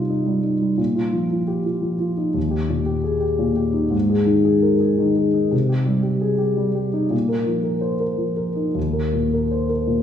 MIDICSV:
0, 0, Header, 1, 2, 480
1, 0, Start_track
1, 0, Tempo, 527241
1, 716, Time_signature, 3, 2, 24, 8
1, 5999, Tempo, 539568
1, 7439, Tempo, 561272
1, 8995, End_track
2, 0, Start_track
2, 0, Title_t, "Grand piano"
2, 0, Program_c, 0, 0
2, 0, Control_c, 0, 64, 127
2, 0, Note_on_c, 0, 48, 39
2, 0, Note_on_c, 0, 55, 31
2, 0, Note_on_c, 0, 63, 33
2, 0, Note_on_c, 0, 65, 36
2, 84, Note_off_c, 0, 63, 0
2, 84, Note_on_c, 0, 63, 35
2, 234, Note_off_c, 0, 55, 0
2, 234, Note_on_c, 0, 55, 35
2, 338, Note_off_c, 0, 63, 0
2, 396, Note_on_c, 0, 63, 33
2, 491, Note_off_c, 0, 55, 0
2, 555, Note_on_c, 0, 55, 31
2, 651, Note_off_c, 0, 63, 0
2, 677, Note_off_c, 0, 48, 0
2, 707, Note_on_c, 0, 46, 42
2, 715, Note_off_c, 0, 55, 0
2, 732, Control_c, 0, 64, 0
2, 736, Note_off_c, 0, 65, 0
2, 868, Note_on_c, 0, 65, 37
2, 882, Control_c, 0, 64, 127
2, 1025, Note_on_c, 0, 53, 33
2, 1125, Note_off_c, 0, 65, 0
2, 1187, Note_on_c, 0, 65, 35
2, 1284, Note_off_c, 0, 53, 0
2, 1341, Note_on_c, 0, 67, 41
2, 1444, Note_off_c, 0, 65, 0
2, 1499, Note_on_c, 0, 65, 38
2, 1505, Note_off_c, 0, 67, 0
2, 1651, Note_on_c, 0, 53, 36
2, 1761, Note_off_c, 0, 65, 0
2, 1810, Note_on_c, 0, 65, 35
2, 1918, Note_off_c, 0, 53, 0
2, 1975, Note_on_c, 0, 63, 31
2, 2077, Note_off_c, 0, 65, 0
2, 2110, Note_off_c, 0, 46, 0
2, 2130, Note_on_c, 0, 39, 44
2, 2143, Note_off_c, 0, 63, 0
2, 2165, Control_c, 0, 64, 0
2, 2281, Note_on_c, 0, 67, 42
2, 2315, Control_c, 0, 64, 127
2, 2451, Note_on_c, 0, 46, 35
2, 2550, Note_off_c, 0, 67, 0
2, 2601, Note_on_c, 0, 67, 41
2, 2715, Note_off_c, 0, 46, 0
2, 2764, Note_on_c, 0, 68, 42
2, 2870, Note_off_c, 0, 67, 0
2, 2915, Note_on_c, 0, 67, 39
2, 2936, Note_off_c, 0, 68, 0
2, 3083, Note_on_c, 0, 46, 43
2, 3188, Note_off_c, 0, 67, 0
2, 3237, Note_on_c, 0, 67, 37
2, 3351, Note_off_c, 0, 46, 0
2, 3393, Note_on_c, 0, 63, 35
2, 3508, Note_off_c, 0, 67, 0
2, 3539, Note_off_c, 0, 39, 0
2, 3552, Note_on_c, 0, 44, 47
2, 3569, Note_off_c, 0, 63, 0
2, 3603, Control_c, 0, 64, 0
2, 3727, Note_on_c, 0, 68, 40
2, 3760, Control_c, 0, 64, 127
2, 3881, Note_on_c, 0, 51, 40
2, 3993, Note_off_c, 0, 68, 0
2, 4049, Note_on_c, 0, 68, 44
2, 4150, Note_off_c, 0, 51, 0
2, 4208, Note_on_c, 0, 70, 45
2, 4315, Note_off_c, 0, 68, 0
2, 4368, Note_on_c, 0, 68, 42
2, 4378, Note_off_c, 0, 70, 0
2, 4531, Note_on_c, 0, 51, 42
2, 4636, Note_off_c, 0, 68, 0
2, 4697, Note_on_c, 0, 68, 38
2, 4799, Note_off_c, 0, 51, 0
2, 4857, Note_on_c, 0, 63, 36
2, 4962, Note_off_c, 0, 68, 0
2, 4980, Note_off_c, 0, 44, 0
2, 5019, Note_on_c, 0, 48, 47
2, 5025, Note_off_c, 0, 63, 0
2, 5049, Control_c, 0, 64, 0
2, 5181, Note_on_c, 0, 67, 41
2, 5192, Control_c, 0, 64, 127
2, 5331, Note_on_c, 0, 55, 38
2, 5442, Note_off_c, 0, 67, 0
2, 5486, Note_on_c, 0, 67, 41
2, 5598, Note_off_c, 0, 55, 0
2, 5655, Note_on_c, 0, 68, 46
2, 5758, Note_off_c, 0, 67, 0
2, 5810, Note_on_c, 0, 67, 41
2, 5827, Note_off_c, 0, 68, 0
2, 5979, Note_on_c, 0, 55, 39
2, 6082, Note_off_c, 0, 67, 0
2, 6140, Note_on_c, 0, 67, 36
2, 6244, Note_off_c, 0, 55, 0
2, 6299, Note_on_c, 0, 63, 37
2, 6404, Note_off_c, 0, 67, 0
2, 6434, Note_off_c, 0, 48, 0
2, 6455, Note_on_c, 0, 46, 46
2, 6468, Note_off_c, 0, 63, 0
2, 6495, Control_c, 0, 64, 0
2, 6618, Note_on_c, 0, 70, 38
2, 6639, Control_c, 0, 64, 127
2, 6775, Note_on_c, 0, 53, 33
2, 6882, Note_off_c, 0, 70, 0
2, 6931, Note_on_c, 0, 70, 38
2, 7041, Note_off_c, 0, 53, 0
2, 7085, Note_on_c, 0, 72, 40
2, 7200, Note_off_c, 0, 70, 0
2, 7254, Note_on_c, 0, 70, 36
2, 7262, Note_off_c, 0, 72, 0
2, 7407, Note_on_c, 0, 53, 34
2, 7522, Note_off_c, 0, 70, 0
2, 7576, Note_on_c, 0, 70, 31
2, 7674, Note_off_c, 0, 53, 0
2, 7734, Note_on_c, 0, 63, 31
2, 7838, Note_off_c, 0, 70, 0
2, 7867, Note_off_c, 0, 46, 0
2, 7898, Note_on_c, 0, 39, 42
2, 7903, Note_off_c, 0, 63, 0
2, 7929, Control_c, 0, 64, 0
2, 8056, Note_on_c, 0, 70, 34
2, 8094, Control_c, 0, 64, 127
2, 8228, Note_on_c, 0, 46, 30
2, 8326, Note_off_c, 0, 70, 0
2, 8400, Note_on_c, 0, 70, 33
2, 8493, Note_off_c, 0, 46, 0
2, 8553, Note_on_c, 0, 72, 38
2, 8658, Note_off_c, 0, 70, 0
2, 8707, Note_on_c, 0, 70, 33
2, 8717, Note_off_c, 0, 72, 0
2, 8861, Note_on_c, 0, 46, 34
2, 8968, Note_off_c, 0, 70, 0
2, 8995, Note_off_c, 0, 39, 0
2, 8995, Note_off_c, 0, 46, 0
2, 8995, End_track
0, 0, End_of_file